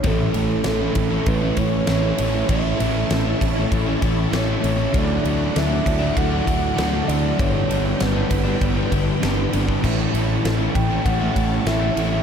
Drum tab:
CC |----------------|----------------|----------------|----------------|
RD |x-x-x-x-x-x-x-x-|x-x-x-x-x-x-x-x-|x-x-x-x-x-x-x-x-|x-x-x-x-x-x-x-x-|
SD |----o-------o---|----o-------o---|----o-------o---|----o-------o---|
BD |o-----o-o-o-----|o-----o-o-o-----|o-----o-o-o-----|o-----o-o-o----o|

CC |x---------------|
RD |--x-x-x-x-x-x-x-|
SD |----o-------o---|
BD |o-----o-o-o-----|